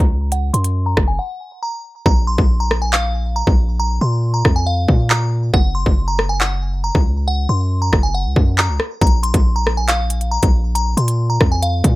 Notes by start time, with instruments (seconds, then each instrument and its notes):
0.00 808-style bass C#2
0.32 synth bell F#5, closed hi-hat
0.54 808-style bass F#2, synth bell C6, closed hi-hat
0.64 closed hi-hat
0.86 synth bell A#5
0.97 808-style bass F#1, kick, cross-stick
1.08 synth bell G#5
1.19 synth bell F#5
1.63 synth bell A#5
2.06 808-style bass A#1, synth bell A#5, kick
2.27 synth bell C6
2.38 808-style bass A#1, kick
2.60 synth bell A#5
2.71 cross-stick
2.82 synth bell G#5
2.93 synth bell F5, clap
3.36 synth bell A#5
3.47 808-style bass A#1, kick
3.80 synth bell A#5
4.01 808-style bass A#2, synth bell C6
4.34 synth bell A#5
4.45 808-style bass F2, kick, cross-stick
4.56 synth bell G#5
4.67 synth bell F5
4.88 808-style bass A#2, kick
5.10 synth bell A#5, clap
5.54 808-style bass F#1, synth bell F#5, kick
5.75 synth bell C6
5.86 808-style bass F#1, kick
6.08 synth bell A#5
6.19 cross-stick
6.29 synth bell G#5
6.40 synth bell F#5, clap
6.84 synth bell A#5
6.95 808-style bass C#2, kick
7.28 synth bell F#5
7.49 808-style bass F#2, synth bell C6
7.82 synth bell A#5
7.93 808-style bass F#1, kick, cross-stick
8.03 synth bell G#5
8.14 synth bell F#5
8.25 808-style bass C#2
8.36 808-style bass F#2, kick
8.58 synth bell A#5, clap
8.69 808-style bass C#2
8.80 cross-stick
9.01 808-style bass A#1, synth bell A#5, kick, closed hi-hat
9.07 closed hi-hat
9.23 synth bell C6, closed hi-hat
9.34 808-style bass A#1, kick, closed hi-hat
9.56 synth bell A#5
9.67 cross-stick
9.77 synth bell G#5
9.88 synth bell F5, clap, closed hi-hat
10.10 closed hi-hat
10.21 closed hi-hat
10.31 synth bell A#5
10.43 808-style bass A#1, kick, closed hi-hat
10.75 synth bell A#5, closed hi-hat
10.97 808-style bass A#2, synth bell C6, closed hi-hat
11.08 closed hi-hat
11.30 synth bell A#5
11.41 808-style bass F2, kick, cross-stick
11.52 synth bell G#5
11.62 synth bell F5, closed hi-hat
11.84 808-style bass A#2, kick, closed hi-hat